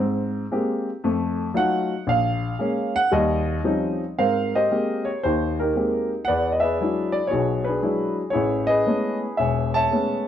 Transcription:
grand piano
0.00 G#2 C4
0.52 G#3 A#3 C4 G4
1.04 F2 A3
1.54 F#3 A3 D#4 F4 F#5
2.07 A#1 F5
2.59 G#3 A#3 C#4
2.96 F#5
3.12 D#2 G3 D#5
3.64 F3 G3 C4 C#4 D#4
4.18 G#2 C4 A#4 C5 F5
4.55 G4 C5 D#5
4.71 G#3 A#3 C4 G4
5.05 C#5
5.23 D#2 D#4 G4 C5
5.59 D#4 G4 A#4
5.75 G#3 A#3 C4 G4
6.25 B4 D5 F#5
6.29 E2
6.52 D#5
6.60 G#4 B4 E5
6.80 F#3 G#3 D4 E4
7.12 D5
7.27 F#4 G#4 C#5
7.32 B1
7.65 G#4 B4
7.69 D4
7.82 F#3 G#3 D4 E4
8.30 E4 G#4 C#5
8.35 A1
8.67 G#4 B4 D#5
8.86 G#3 A3 B3 C#4
9.37 E1 C#5 E5 G#5
9.74 C#5 E5 A5
9.91 G#3 A3 B3 C#4

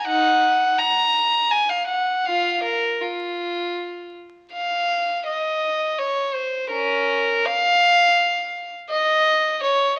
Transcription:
violin
0.07 D#4 F#5
0.78 A#5
1.51 G#5
1.69 F5
1.87 F#5
2.25 F4 F5
2.63 A#4
3.01 F4
4.53 F5
5.26 D#5
5.99 C#5
6.34 C5
6.70 C#4 A#4
7.45 F5
8.90 D#5
9.62 C#5

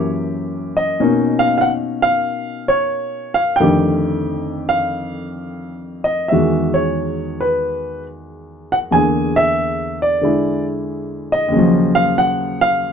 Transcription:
grand piano
Already playing: F#2 E3 A#3 G4
0.77 D#5
1.00 B2 A#3 C#4 D#4
1.39 F5
1.58 F5 F#5
2.02 F5
2.68 C#5
3.34 F5
3.56 G5
3.60 F2 D3 D#3 A3 G4
4.69 F5
6.04 D#5
6.28 E2 D#3 E5
6.32 G#3 F#4
6.74 C#5
7.41 B4
8.72 F#5
8.91 E2 D3 A#3 G#5
8.96 G#4
9.36 E5
10.02 D5
10.21 D3 G#3 E4
11.32 D#5
11.48 D#2 C#3
11.56 F3 F#3
11.95 F5
12.18 F#5
12.61 F5

